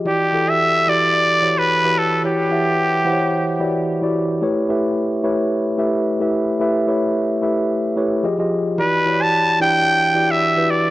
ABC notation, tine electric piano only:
X:1
M:4/4
L:1/16
Q:"Swing 16ths" 1/4=110
K:Edor
V:1 name="Tine electric piano"
[E,EFGd]2 [E,EFGA]3 z [E,EFGd]3 z [E,EFGc]2 z [E,EFGB]2 z | [E,EFGc]2 [E,EGef]3 z [E,EG=c^cf]3 z [E,EFGd]2 z [E,EFGd]2 z | [A,EGBc]2 [A,EGBe]3 z [A,EGBc]3 z [A,EGBe]2 z [A,EGBe]2 z | [A,EGBe]2 [A,EGBc]3 z [A,EGBe]3 z [A,EGBc]2 [=F,=FG_A_e] [F,FGAe]2 z |
[E,EFGd]2 [E,EFGcd]3 z [E,DEGd]3 z [E,EFGd]2 z [E,EFGB]2 z |]